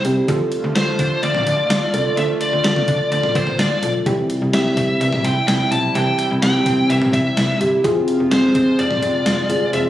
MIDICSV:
0, 0, Header, 1, 7, 480
1, 0, Start_track
1, 0, Key_signature, 0, "major"
1, 0, Tempo, 472441
1, 288, Time_signature, 4, 2, 24, 8
1, 10053, End_track
2, 0, Start_track
2, 0, Title_t, "Lead electric guitar"
2, 0, Program_c, 0, 29
2, 767, Note_on_c, 0, 72, 92
2, 1246, Note_on_c, 0, 74, 97
2, 1262, Note_off_c, 0, 72, 0
2, 2205, Note_off_c, 0, 74, 0
2, 2209, Note_on_c, 0, 76, 109
2, 2274, Note_off_c, 0, 76, 0
2, 2449, Note_on_c, 0, 74, 94
2, 2677, Note_off_c, 0, 74, 0
2, 2689, Note_on_c, 0, 74, 102
2, 3158, Note_off_c, 0, 74, 0
2, 3171, Note_on_c, 0, 74, 93
2, 3413, Note_on_c, 0, 72, 84
2, 3416, Note_off_c, 0, 74, 0
2, 3650, Note_on_c, 0, 74, 83
2, 3658, Note_off_c, 0, 72, 0
2, 3984, Note_off_c, 0, 74, 0
2, 4611, Note_on_c, 0, 76, 92
2, 5079, Note_off_c, 0, 76, 0
2, 5092, Note_on_c, 0, 76, 90
2, 5330, Note_on_c, 0, 79, 94
2, 5337, Note_off_c, 0, 76, 0
2, 5557, Note_off_c, 0, 79, 0
2, 5569, Note_on_c, 0, 79, 106
2, 5806, Note_off_c, 0, 79, 0
2, 5811, Note_on_c, 0, 81, 104
2, 6046, Note_off_c, 0, 81, 0
2, 6050, Note_on_c, 0, 79, 108
2, 6276, Note_off_c, 0, 79, 0
2, 6288, Note_on_c, 0, 79, 95
2, 6353, Note_off_c, 0, 79, 0
2, 6527, Note_on_c, 0, 79, 104
2, 7007, Note_on_c, 0, 76, 93
2, 7022, Note_off_c, 0, 79, 0
2, 7072, Note_off_c, 0, 76, 0
2, 7249, Note_on_c, 0, 76, 81
2, 7695, Note_off_c, 0, 76, 0
2, 8448, Note_on_c, 0, 72, 90
2, 8930, Note_on_c, 0, 74, 98
2, 8942, Note_off_c, 0, 72, 0
2, 9848, Note_off_c, 0, 74, 0
2, 9889, Note_on_c, 0, 76, 114
2, 9954, Note_off_c, 0, 76, 0
2, 10053, End_track
3, 0, Start_track
3, 0, Title_t, "Synth keys"
3, 0, Program_c, 1, 88
3, 47, Note_on_c, 1, 64, 65
3, 47, Note_on_c, 1, 67, 77
3, 48, Note_on_c, 1, 60, 70
3, 241, Note_off_c, 1, 60, 0
3, 241, Note_off_c, 1, 64, 0
3, 241, Note_off_c, 1, 67, 0
3, 288, Note_on_c, 1, 62, 88
3, 288, Note_on_c, 1, 65, 83
3, 288, Note_on_c, 1, 69, 94
3, 674, Note_off_c, 1, 62, 0
3, 674, Note_off_c, 1, 65, 0
3, 674, Note_off_c, 1, 69, 0
3, 766, Note_on_c, 1, 62, 77
3, 767, Note_on_c, 1, 65, 71
3, 767, Note_on_c, 1, 69, 86
3, 1540, Note_off_c, 1, 62, 0
3, 1541, Note_off_c, 1, 65, 0
3, 1541, Note_off_c, 1, 69, 0
3, 1968, Note_on_c, 1, 62, 84
3, 1968, Note_on_c, 1, 65, 79
3, 1968, Note_on_c, 1, 69, 93
3, 2161, Note_off_c, 1, 62, 0
3, 2161, Note_off_c, 1, 65, 0
3, 2161, Note_off_c, 1, 69, 0
3, 2208, Note_on_c, 1, 62, 74
3, 2209, Note_on_c, 1, 65, 68
3, 2209, Note_on_c, 1, 69, 81
3, 2595, Note_off_c, 1, 62, 0
3, 2595, Note_off_c, 1, 65, 0
3, 2595, Note_off_c, 1, 69, 0
3, 2687, Note_on_c, 1, 62, 78
3, 2687, Note_on_c, 1, 65, 70
3, 2687, Note_on_c, 1, 69, 82
3, 3461, Note_off_c, 1, 62, 0
3, 3461, Note_off_c, 1, 65, 0
3, 3461, Note_off_c, 1, 69, 0
3, 3889, Note_on_c, 1, 62, 71
3, 3889, Note_on_c, 1, 65, 63
3, 3889, Note_on_c, 1, 69, 78
3, 4081, Note_off_c, 1, 69, 0
3, 4082, Note_off_c, 1, 62, 0
3, 4082, Note_off_c, 1, 65, 0
3, 4128, Note_on_c, 1, 60, 88
3, 4128, Note_on_c, 1, 64, 84
3, 4128, Note_on_c, 1, 67, 95
3, 4515, Note_off_c, 1, 60, 0
3, 4515, Note_off_c, 1, 64, 0
3, 4515, Note_off_c, 1, 67, 0
3, 4608, Note_on_c, 1, 60, 77
3, 4608, Note_on_c, 1, 64, 69
3, 4608, Note_on_c, 1, 67, 83
3, 5381, Note_off_c, 1, 60, 0
3, 5381, Note_off_c, 1, 64, 0
3, 5381, Note_off_c, 1, 67, 0
3, 5807, Note_on_c, 1, 60, 70
3, 5807, Note_on_c, 1, 64, 64
3, 5807, Note_on_c, 1, 67, 77
3, 6001, Note_off_c, 1, 60, 0
3, 6001, Note_off_c, 1, 64, 0
3, 6001, Note_off_c, 1, 67, 0
3, 6048, Note_on_c, 1, 60, 72
3, 6048, Note_on_c, 1, 64, 69
3, 6048, Note_on_c, 1, 67, 84
3, 6435, Note_off_c, 1, 60, 0
3, 6435, Note_off_c, 1, 64, 0
3, 6435, Note_off_c, 1, 67, 0
3, 6528, Note_on_c, 1, 60, 79
3, 6528, Note_on_c, 1, 64, 70
3, 6528, Note_on_c, 1, 67, 85
3, 7301, Note_off_c, 1, 60, 0
3, 7301, Note_off_c, 1, 64, 0
3, 7301, Note_off_c, 1, 67, 0
3, 7727, Note_on_c, 1, 64, 64
3, 7727, Note_on_c, 1, 67, 77
3, 7728, Note_on_c, 1, 60, 69
3, 7921, Note_off_c, 1, 60, 0
3, 7921, Note_off_c, 1, 64, 0
3, 7921, Note_off_c, 1, 67, 0
3, 7968, Note_on_c, 1, 60, 92
3, 7968, Note_on_c, 1, 65, 81
3, 7968, Note_on_c, 1, 68, 96
3, 8354, Note_off_c, 1, 65, 0
3, 8354, Note_off_c, 1, 68, 0
3, 8355, Note_off_c, 1, 60, 0
3, 8447, Note_on_c, 1, 60, 80
3, 8447, Note_on_c, 1, 65, 71
3, 8447, Note_on_c, 1, 68, 88
3, 9221, Note_off_c, 1, 60, 0
3, 9221, Note_off_c, 1, 65, 0
3, 9221, Note_off_c, 1, 68, 0
3, 9646, Note_on_c, 1, 60, 84
3, 9646, Note_on_c, 1, 65, 75
3, 9646, Note_on_c, 1, 68, 94
3, 9840, Note_off_c, 1, 60, 0
3, 9840, Note_off_c, 1, 65, 0
3, 9840, Note_off_c, 1, 68, 0
3, 9886, Note_on_c, 1, 60, 73
3, 9887, Note_on_c, 1, 65, 68
3, 9887, Note_on_c, 1, 68, 79
3, 10053, Note_off_c, 1, 60, 0
3, 10053, Note_off_c, 1, 65, 0
3, 10053, Note_off_c, 1, 68, 0
3, 10053, End_track
4, 0, Start_track
4, 0, Title_t, "Synth arpeggio sound"
4, 0, Program_c, 2, 84
4, 288, Note_on_c, 2, 53, 92
4, 437, Note_off_c, 2, 53, 0
4, 768, Note_on_c, 2, 57, 73
4, 917, Note_off_c, 2, 57, 0
4, 1009, Note_on_c, 2, 62, 92
4, 1158, Note_off_c, 2, 62, 0
4, 1249, Note_on_c, 2, 53, 75
4, 1398, Note_off_c, 2, 53, 0
4, 1487, Note_on_c, 2, 62, 79
4, 1637, Note_off_c, 2, 62, 0
4, 1727, Note_on_c, 2, 65, 98
4, 1877, Note_off_c, 2, 65, 0
4, 2209, Note_on_c, 2, 53, 91
4, 2358, Note_off_c, 2, 53, 0
4, 2688, Note_on_c, 2, 57, 73
4, 2837, Note_off_c, 2, 57, 0
4, 2928, Note_on_c, 2, 62, 91
4, 3077, Note_off_c, 2, 62, 0
4, 3167, Note_on_c, 2, 53, 77
4, 3316, Note_off_c, 2, 53, 0
4, 3407, Note_on_c, 2, 62, 78
4, 3556, Note_off_c, 2, 62, 0
4, 3647, Note_on_c, 2, 65, 94
4, 3796, Note_off_c, 2, 65, 0
4, 4129, Note_on_c, 2, 52, 91
4, 4278, Note_off_c, 2, 52, 0
4, 4609, Note_on_c, 2, 55, 76
4, 4758, Note_off_c, 2, 55, 0
4, 4848, Note_on_c, 2, 60, 91
4, 4997, Note_off_c, 2, 60, 0
4, 5088, Note_on_c, 2, 52, 74
4, 5237, Note_off_c, 2, 52, 0
4, 5328, Note_on_c, 2, 60, 78
4, 5477, Note_off_c, 2, 60, 0
4, 5568, Note_on_c, 2, 64, 98
4, 5717, Note_off_c, 2, 64, 0
4, 6048, Note_on_c, 2, 52, 93
4, 6197, Note_off_c, 2, 52, 0
4, 6526, Note_on_c, 2, 55, 75
4, 6676, Note_off_c, 2, 55, 0
4, 6767, Note_on_c, 2, 60, 94
4, 6916, Note_off_c, 2, 60, 0
4, 7007, Note_on_c, 2, 52, 75
4, 7156, Note_off_c, 2, 52, 0
4, 7247, Note_on_c, 2, 60, 80
4, 7396, Note_off_c, 2, 60, 0
4, 7487, Note_on_c, 2, 64, 100
4, 7637, Note_off_c, 2, 64, 0
4, 7968, Note_on_c, 2, 53, 93
4, 8117, Note_off_c, 2, 53, 0
4, 8448, Note_on_c, 2, 56, 75
4, 8597, Note_off_c, 2, 56, 0
4, 8688, Note_on_c, 2, 60, 91
4, 8837, Note_off_c, 2, 60, 0
4, 8927, Note_on_c, 2, 53, 75
4, 9076, Note_off_c, 2, 53, 0
4, 9167, Note_on_c, 2, 60, 77
4, 9316, Note_off_c, 2, 60, 0
4, 9406, Note_on_c, 2, 65, 96
4, 9556, Note_off_c, 2, 65, 0
4, 9887, Note_on_c, 2, 53, 90
4, 10037, Note_off_c, 2, 53, 0
4, 10053, End_track
5, 0, Start_track
5, 0, Title_t, "Analog synth pad"
5, 0, Program_c, 3, 89
5, 0, Note_on_c, 3, 48, 78
5, 0, Note_on_c, 3, 55, 71
5, 0, Note_on_c, 3, 64, 84
5, 249, Note_off_c, 3, 64, 0
5, 250, Note_off_c, 3, 48, 0
5, 250, Note_off_c, 3, 55, 0
5, 288, Note_on_c, 3, 50, 78
5, 289, Note_on_c, 3, 57, 70
5, 289, Note_on_c, 3, 65, 91
5, 4090, Note_off_c, 3, 50, 0
5, 4090, Note_off_c, 3, 57, 0
5, 4090, Note_off_c, 3, 65, 0
5, 4128, Note_on_c, 3, 55, 72
5, 4129, Note_on_c, 3, 48, 82
5, 4129, Note_on_c, 3, 64, 89
5, 7930, Note_off_c, 3, 55, 0
5, 7930, Note_off_c, 3, 64, 0
5, 7968, Note_on_c, 3, 56, 73
5, 7968, Note_on_c, 3, 65, 87
5, 10053, Note_off_c, 3, 48, 0
5, 10053, Note_off_c, 3, 56, 0
5, 10053, Note_off_c, 3, 65, 0
5, 10053, End_track
6, 0, Start_track
6, 0, Title_t, "FM bass"
6, 0, Program_c, 4, 39
6, 49, Note_on_c, 4, 36, 98
6, 216, Note_off_c, 4, 36, 0
6, 288, Note_on_c, 4, 38, 110
6, 456, Note_off_c, 4, 38, 0
6, 649, Note_on_c, 4, 38, 107
6, 732, Note_off_c, 4, 38, 0
6, 769, Note_on_c, 4, 38, 101
6, 936, Note_off_c, 4, 38, 0
6, 1007, Note_on_c, 4, 38, 99
6, 1176, Note_off_c, 4, 38, 0
6, 1247, Note_on_c, 4, 38, 109
6, 1415, Note_off_c, 4, 38, 0
6, 1487, Note_on_c, 4, 38, 100
6, 1655, Note_off_c, 4, 38, 0
6, 1727, Note_on_c, 4, 38, 92
6, 1895, Note_off_c, 4, 38, 0
6, 1968, Note_on_c, 4, 36, 97
6, 2136, Note_off_c, 4, 36, 0
6, 2207, Note_on_c, 4, 38, 115
6, 2375, Note_off_c, 4, 38, 0
6, 2567, Note_on_c, 4, 38, 100
6, 2652, Note_off_c, 4, 38, 0
6, 2688, Note_on_c, 4, 38, 106
6, 2856, Note_off_c, 4, 38, 0
6, 2928, Note_on_c, 4, 38, 93
6, 3096, Note_off_c, 4, 38, 0
6, 3167, Note_on_c, 4, 38, 112
6, 3335, Note_off_c, 4, 38, 0
6, 3407, Note_on_c, 4, 38, 104
6, 3575, Note_off_c, 4, 38, 0
6, 3647, Note_on_c, 4, 38, 99
6, 3815, Note_off_c, 4, 38, 0
6, 3887, Note_on_c, 4, 35, 102
6, 4056, Note_off_c, 4, 35, 0
6, 4128, Note_on_c, 4, 36, 106
6, 4296, Note_off_c, 4, 36, 0
6, 4487, Note_on_c, 4, 36, 89
6, 4571, Note_off_c, 4, 36, 0
6, 4607, Note_on_c, 4, 36, 104
6, 4775, Note_off_c, 4, 36, 0
6, 4848, Note_on_c, 4, 36, 113
6, 5016, Note_off_c, 4, 36, 0
6, 5087, Note_on_c, 4, 36, 110
6, 5255, Note_off_c, 4, 36, 0
6, 5327, Note_on_c, 4, 36, 101
6, 5496, Note_off_c, 4, 36, 0
6, 5568, Note_on_c, 4, 36, 98
6, 5736, Note_off_c, 4, 36, 0
6, 5808, Note_on_c, 4, 35, 101
6, 5976, Note_off_c, 4, 35, 0
6, 6048, Note_on_c, 4, 36, 113
6, 6216, Note_off_c, 4, 36, 0
6, 6408, Note_on_c, 4, 36, 97
6, 6492, Note_off_c, 4, 36, 0
6, 6528, Note_on_c, 4, 36, 105
6, 6696, Note_off_c, 4, 36, 0
6, 6768, Note_on_c, 4, 36, 99
6, 6936, Note_off_c, 4, 36, 0
6, 7008, Note_on_c, 4, 36, 102
6, 7176, Note_off_c, 4, 36, 0
6, 7248, Note_on_c, 4, 36, 101
6, 7416, Note_off_c, 4, 36, 0
6, 7489, Note_on_c, 4, 36, 95
6, 7657, Note_off_c, 4, 36, 0
6, 7728, Note_on_c, 4, 31, 105
6, 7896, Note_off_c, 4, 31, 0
6, 7969, Note_on_c, 4, 29, 110
6, 8137, Note_off_c, 4, 29, 0
6, 8328, Note_on_c, 4, 29, 94
6, 8412, Note_off_c, 4, 29, 0
6, 8449, Note_on_c, 4, 29, 104
6, 8616, Note_off_c, 4, 29, 0
6, 8688, Note_on_c, 4, 29, 95
6, 8856, Note_off_c, 4, 29, 0
6, 8928, Note_on_c, 4, 29, 114
6, 9096, Note_off_c, 4, 29, 0
6, 9168, Note_on_c, 4, 29, 103
6, 9336, Note_off_c, 4, 29, 0
6, 9408, Note_on_c, 4, 29, 103
6, 9576, Note_off_c, 4, 29, 0
6, 9647, Note_on_c, 4, 31, 95
6, 9815, Note_off_c, 4, 31, 0
6, 9888, Note_on_c, 4, 29, 111
6, 10053, Note_off_c, 4, 29, 0
6, 10053, End_track
7, 0, Start_track
7, 0, Title_t, "Drums"
7, 48, Note_on_c, 9, 42, 88
7, 150, Note_off_c, 9, 42, 0
7, 288, Note_on_c, 9, 36, 103
7, 288, Note_on_c, 9, 42, 70
7, 389, Note_off_c, 9, 42, 0
7, 390, Note_off_c, 9, 36, 0
7, 525, Note_on_c, 9, 42, 72
7, 626, Note_off_c, 9, 42, 0
7, 767, Note_on_c, 9, 38, 104
7, 769, Note_on_c, 9, 42, 71
7, 869, Note_off_c, 9, 38, 0
7, 870, Note_off_c, 9, 42, 0
7, 1006, Note_on_c, 9, 42, 87
7, 1008, Note_on_c, 9, 36, 88
7, 1107, Note_off_c, 9, 42, 0
7, 1109, Note_off_c, 9, 36, 0
7, 1250, Note_on_c, 9, 42, 73
7, 1351, Note_off_c, 9, 42, 0
7, 1367, Note_on_c, 9, 45, 93
7, 1469, Note_off_c, 9, 45, 0
7, 1490, Note_on_c, 9, 42, 85
7, 1592, Note_off_c, 9, 42, 0
7, 1729, Note_on_c, 9, 38, 122
7, 1731, Note_on_c, 9, 42, 81
7, 1831, Note_off_c, 9, 38, 0
7, 1832, Note_off_c, 9, 42, 0
7, 1968, Note_on_c, 9, 42, 84
7, 2070, Note_off_c, 9, 42, 0
7, 2208, Note_on_c, 9, 42, 72
7, 2309, Note_off_c, 9, 42, 0
7, 2445, Note_on_c, 9, 42, 76
7, 2547, Note_off_c, 9, 42, 0
7, 2686, Note_on_c, 9, 38, 106
7, 2687, Note_on_c, 9, 42, 70
7, 2788, Note_off_c, 9, 38, 0
7, 2789, Note_off_c, 9, 42, 0
7, 2807, Note_on_c, 9, 47, 111
7, 2909, Note_off_c, 9, 47, 0
7, 2925, Note_on_c, 9, 42, 86
7, 2927, Note_on_c, 9, 36, 91
7, 3026, Note_off_c, 9, 42, 0
7, 3029, Note_off_c, 9, 36, 0
7, 3168, Note_on_c, 9, 42, 70
7, 3270, Note_off_c, 9, 42, 0
7, 3286, Note_on_c, 9, 45, 97
7, 3388, Note_off_c, 9, 45, 0
7, 3407, Note_on_c, 9, 36, 93
7, 3407, Note_on_c, 9, 56, 69
7, 3408, Note_on_c, 9, 42, 86
7, 3508, Note_off_c, 9, 36, 0
7, 3508, Note_off_c, 9, 56, 0
7, 3510, Note_off_c, 9, 42, 0
7, 3524, Note_on_c, 9, 45, 88
7, 3626, Note_off_c, 9, 45, 0
7, 3648, Note_on_c, 9, 38, 118
7, 3650, Note_on_c, 9, 42, 77
7, 3750, Note_off_c, 9, 38, 0
7, 3751, Note_off_c, 9, 42, 0
7, 3888, Note_on_c, 9, 42, 82
7, 3990, Note_off_c, 9, 42, 0
7, 4127, Note_on_c, 9, 42, 74
7, 4128, Note_on_c, 9, 36, 106
7, 4229, Note_off_c, 9, 36, 0
7, 4229, Note_off_c, 9, 42, 0
7, 4366, Note_on_c, 9, 42, 75
7, 4467, Note_off_c, 9, 42, 0
7, 4607, Note_on_c, 9, 38, 107
7, 4608, Note_on_c, 9, 42, 71
7, 4709, Note_off_c, 9, 38, 0
7, 4710, Note_off_c, 9, 42, 0
7, 4846, Note_on_c, 9, 42, 87
7, 4848, Note_on_c, 9, 36, 89
7, 4948, Note_off_c, 9, 42, 0
7, 4949, Note_off_c, 9, 36, 0
7, 5089, Note_on_c, 9, 42, 72
7, 5191, Note_off_c, 9, 42, 0
7, 5207, Note_on_c, 9, 45, 95
7, 5309, Note_off_c, 9, 45, 0
7, 5329, Note_on_c, 9, 42, 84
7, 5431, Note_off_c, 9, 42, 0
7, 5568, Note_on_c, 9, 38, 125
7, 5570, Note_on_c, 9, 42, 77
7, 5670, Note_off_c, 9, 38, 0
7, 5672, Note_off_c, 9, 42, 0
7, 5808, Note_on_c, 9, 42, 83
7, 5909, Note_off_c, 9, 42, 0
7, 6048, Note_on_c, 9, 42, 75
7, 6150, Note_off_c, 9, 42, 0
7, 6286, Note_on_c, 9, 42, 76
7, 6387, Note_off_c, 9, 42, 0
7, 6528, Note_on_c, 9, 38, 104
7, 6529, Note_on_c, 9, 42, 71
7, 6629, Note_off_c, 9, 38, 0
7, 6630, Note_off_c, 9, 42, 0
7, 6767, Note_on_c, 9, 42, 85
7, 6768, Note_on_c, 9, 36, 89
7, 6868, Note_off_c, 9, 42, 0
7, 6869, Note_off_c, 9, 36, 0
7, 7010, Note_on_c, 9, 42, 69
7, 7112, Note_off_c, 9, 42, 0
7, 7128, Note_on_c, 9, 45, 98
7, 7230, Note_off_c, 9, 45, 0
7, 7248, Note_on_c, 9, 36, 91
7, 7251, Note_on_c, 9, 42, 85
7, 7350, Note_off_c, 9, 36, 0
7, 7352, Note_off_c, 9, 42, 0
7, 7490, Note_on_c, 9, 38, 124
7, 7492, Note_on_c, 9, 42, 77
7, 7592, Note_off_c, 9, 38, 0
7, 7593, Note_off_c, 9, 42, 0
7, 7730, Note_on_c, 9, 42, 86
7, 7831, Note_off_c, 9, 42, 0
7, 7969, Note_on_c, 9, 36, 104
7, 7970, Note_on_c, 9, 42, 72
7, 8070, Note_off_c, 9, 36, 0
7, 8071, Note_off_c, 9, 42, 0
7, 8207, Note_on_c, 9, 42, 75
7, 8309, Note_off_c, 9, 42, 0
7, 8448, Note_on_c, 9, 38, 106
7, 8449, Note_on_c, 9, 42, 70
7, 8549, Note_off_c, 9, 38, 0
7, 8550, Note_off_c, 9, 42, 0
7, 8686, Note_on_c, 9, 42, 87
7, 8688, Note_on_c, 9, 36, 91
7, 8788, Note_off_c, 9, 42, 0
7, 8790, Note_off_c, 9, 36, 0
7, 8929, Note_on_c, 9, 42, 72
7, 9031, Note_off_c, 9, 42, 0
7, 9049, Note_on_c, 9, 45, 100
7, 9150, Note_off_c, 9, 45, 0
7, 9170, Note_on_c, 9, 42, 85
7, 9271, Note_off_c, 9, 42, 0
7, 9408, Note_on_c, 9, 38, 125
7, 9410, Note_on_c, 9, 42, 78
7, 9510, Note_off_c, 9, 38, 0
7, 9511, Note_off_c, 9, 42, 0
7, 9648, Note_on_c, 9, 42, 85
7, 9750, Note_off_c, 9, 42, 0
7, 9888, Note_on_c, 9, 42, 70
7, 9990, Note_off_c, 9, 42, 0
7, 10053, End_track
0, 0, End_of_file